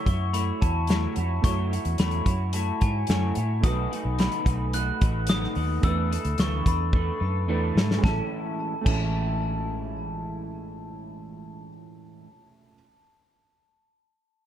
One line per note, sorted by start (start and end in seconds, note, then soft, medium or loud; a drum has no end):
0.00 1.39 A3 medium
0.00 1.40 E4 medium
0.00 1.40 F#4 medium
0.00 1.41 C#5 medium
0.05 0.50 F#2 medium
0.05 0.33 E4 soft
0.05 0.33 F#4 soft
0.05 0.33 C#5 medium
0.05 0.19 C#6 medium
0.05 kick medium
0.05 closed hi-hat medium
0.33 0.61 A3 medium
0.33 0.61 E4 medium
0.33 0.61 F#4 medium
0.33 0.60 C#5 medium
0.33 0.46 B5 medium
0.33 closed hi-hat loud
0.61 1.06 E2 medium
0.61 0.88 E4 soft
0.61 0.89 F#4 soft
0.61 0.89 C#5 soft
0.61 1.13 A5 medium
0.61 kick medium
0.61 closed hi-hat medium
0.87 1.16 F#3 medium
0.87 1.16 A3 medium
0.87 1.17 E4 medium
0.87 1.16 F#4 medium
0.87 1.15 C#5 medium
0.87 snare loud
0.87 closed hi-hat medium
1.16 1.39 F2 medium
1.16 1.44 E4 soft
1.16 1.44 F#4 medium
1.16 1.44 C#5 medium
1.16 closed hi-hat medium
1.42 1.77 F#2 medium
1.42 1.71 F#3 medium
1.42 3.59 A3 medium
1.42 1.71 A3 medium
1.42 3.60 E4 medium
1.42 1.72 E4 medium
1.42 3.60 F#4 medium
1.42 1.71 F#4 medium
1.42 1.70 C#5 medium
1.42 2.01 C#6 loud
1.42 kick loud
1.42 closed hi-hat loud
1.47 3.61 C#5 medium
1.71 1.99 E4 soft
1.71 1.99 F#4 soft
1.71 1.99 C#5 medium
1.71 closed hi-hat medium
1.85 1.96 E2 medium
1.85 closed hi-hat medium
1.98 2.21 E2 loud
1.98 2.27 F#3 medium
1.98 2.27 A3 medium
1.98 2.27 E4 medium
1.98 2.25 F#4 medium
1.98 2.24 C#5 medium
1.98 2.56 B5 medium
1.98 snare loud
1.98 closed hi-hat medium
2.11 closed hi-hat soft
2.25 2.70 F#2 medium
2.25 2.53 E4 soft
2.25 2.53 F#4 medium
2.25 2.53 C#5 medium
2.25 kick medium
2.25 closed hi-hat medium
2.53 2.81 A3 medium
2.53 2.81 E4 medium
2.53 2.81 F#4 medium
2.53 2.79 C#5 medium
2.53 2.66 A5 medium
2.53 closed hi-hat loud
2.80 3.04 G#2 medium
2.80 3.08 E4 soft
2.80 3.09 F#4 soft
2.80 3.08 C#5 medium
2.80 3.33 G#5 medium
2.80 kick medium
2.80 closed hi-hat medium
3.07 3.31 F#2 medium
3.07 3.36 F#3 medium
3.07 3.36 A3 medium
3.07 3.37 E4 medium
3.07 3.36 F#4 medium
3.07 3.35 C#5 medium
3.07 snare loud
3.07 closed hi-hat medium
3.35 3.65 A2 medium
3.35 3.64 E4 soft
3.35 3.64 F#4 soft
3.35 3.64 C#5 medium
3.35 closed hi-hat medium
3.61 3.86 B1 loud
3.61 3.91 B2 medium
3.61 3.91 F#3 medium
3.61 5.78 A3 medium
3.61 3.91 A3 medium
3.61 5.79 D#4 medium
3.61 3.92 D#4 medium
3.61 5.80 F#4 medium
3.61 3.91 F#4 medium
3.61 3.90 B4 medium
3.61 4.20 D#6 medium
3.61 kick loud
3.61 closed hi-hat loud
3.66 5.81 B4 medium
3.91 4.18 A3 medium
3.91 4.19 D#4 soft
3.91 4.19 F#4 medium
3.91 4.18 B4 medium
3.91 closed hi-hat medium
4.05 4.27 B1 medium
4.19 4.46 B2 medium
4.19 4.46 F#3 medium
4.19 4.47 A3 medium
4.19 4.46 D#4 loud
4.19 4.45 F#4 loud
4.19 4.44 B4 medium
4.19 4.70 B5 medium
4.19 snare medium
4.19 closed hi-hat medium
4.32 closed hi-hat soft
4.45 4.90 B1 loud
4.45 4.72 A3 soft
4.45 4.73 D#4 soft
4.45 4.74 F#4 medium
4.45 4.73 B4 medium
4.45 kick medium
4.45 closed hi-hat medium
4.73 5.01 A3 medium
4.73 5.01 D#4 medium
4.73 5.01 F#4 medium
4.73 5.00 B4 medium
4.73 5.30 F#6 medium
4.73 closed hi-hat loud
5.01 5.45 A1 medium
5.01 5.28 A3 soft
5.01 5.28 D#4 soft
5.01 5.28 F#4 soft
5.01 5.29 B4 medium
5.01 kick medium
5.01 closed hi-hat medium
5.27 5.56 B2 medium
5.27 5.56 F#3 medium
5.27 5.56 A3 medium
5.27 5.56 D#4 medium
5.27 5.56 F#4 medium
5.27 5.55 B4 medium
5.27 5.86 D#6 loud
5.27 snare loud
5.27 closed hi-hat medium
5.44 snare soft
5.55 5.78 D#2 loud
5.55 5.82 A3 soft
5.55 5.83 D#4 soft
5.55 5.84 F#4 medium
5.55 5.84 B4 medium
5.55 open hi-hat soft
5.82 6.16 E2 loud
5.82 6.11 E3 medium
5.82 7.44 A3 medium
5.82 6.11 A3 medium
5.82 7.45 D4 medium
5.82 6.11 D4 medium
5.82 7.46 E4 medium
5.82 6.10 A4 medium
5.82 6.10 B4 medium
5.82 6.40 E6 loud
5.82 kick loud
5.82 closed hi-hat medium
5.86 7.47 B4 medium
6.11 6.38 D4 soft
6.11 6.38 A4 medium
6.11 6.38 B4 medium
6.11 closed hi-hat medium
6.25 6.36 D2 medium
6.25 closed hi-hat medium
6.38 6.61 D2 medium
6.38 6.66 E3 medium
6.38 6.66 A3 medium
6.38 6.66 D4 medium
6.38 6.66 A4 medium
6.38 6.64 B4 medium
6.38 6.68 C#6 medium
6.38 snare loud
6.38 closed hi-hat medium
6.65 7.10 E2 medium
6.65 6.93 D4 soft
6.65 6.94 A4 soft
6.65 6.93 B4 medium
6.65 7.45 B5 medium
6.65 kick medium
6.65 closed hi-hat medium
6.93 7.21 A3 medium
6.93 7.21 D4 medium
6.93 7.20 A4 medium
6.93 7.19 B4 medium
6.93 kick medium
7.20 7.48 F#2 medium
7.20 7.48 D4 soft
7.20 7.48 A4 soft
7.20 7.48 B4 medium
7.47 7.70 E2 medium
7.47 7.76 E3 medium
7.47 8.03 A3 medium
7.47 7.76 A3 medium
7.47 8.03 D4 medium
7.47 7.76 D4 medium
7.47 8.03 E4 medium
7.47 7.75 A4 medium
7.47 7.74 B4 medium
7.47 8.04 B4 medium
7.75 7.98 G#2 medium
7.75 8.04 D4 medium
7.75 8.04 A4 medium
7.75 8.03 B4 medium
7.75 snare loud
7.91 snare medium
7.98 8.16 G#3 medium
7.98 8.18 C#4 medium
8.02 8.19 A1 medium
8.02 8.73 A2 medium
8.02 8.73 E3 medium
8.02 8.73 G#3 medium
8.02 8.20 E4 medium
8.02 8.19 A5 medium
8.02 kick loud
8.02 snare medium
8.07 8.73 C#4 medium
8.07 8.73 E4 medium
8.07 8.21 A4 medium
8.81 12.26 A2 medium
8.81 11.67 A3 medium
8.81 11.69 C#4 medium
8.86 11.69 A1 medium
8.86 12.26 E3 medium
8.86 12.26 G#3 medium
8.86 12.26 C#4 medium
8.86 11.70 E4 medium
8.86 11.70 A5 medium
8.86 kick medium
8.86 crash medium
8.90 12.26 E4 medium
8.90 11.72 A5 medium